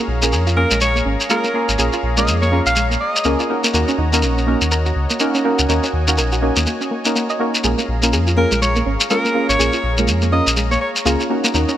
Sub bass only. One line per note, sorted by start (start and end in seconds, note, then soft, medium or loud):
0.08 0.34 A#1 loud
0.32 0.66 F2 loud
0.71 1.02 A#1 medium
1.06 1.16 G#1 loud
1.69 1.76 G#1 loud
1.79 1.90 A#1 loud
2.03 2.29 A#1 loud
2.28 2.61 F2 loud
2.66 2.97 A#1 medium
3.25 3.36 C#2 medium
3.74 3.85 D#2 medium
3.98 4.24 D#2 loud
4.23 4.56 A#1 loud
4.61 4.92 D#2 medium
4.96 5.07 C#2 loud
5.59 5.67 C#2 loud
5.69 5.80 D#2 loud
5.93 6.19 D#2 medium
6.18 6.51 A#1 loud
6.57 6.67 D#2 medium
7.64 7.75 A#1 loud
7.89 8.14 A#1 medium
8.13 8.46 F2 loud
8.52 8.82 A#1 medium
8.86 8.97 G#1 loud
9.49 9.57 G#1 loud
9.59 9.70 A#1 loud
9.84 10.10 A#1 loud
10.08 10.41 F2 loud
10.47 10.77 A#1 medium
11.06 11.16 C#2 medium
11.54 11.65 D#2 loud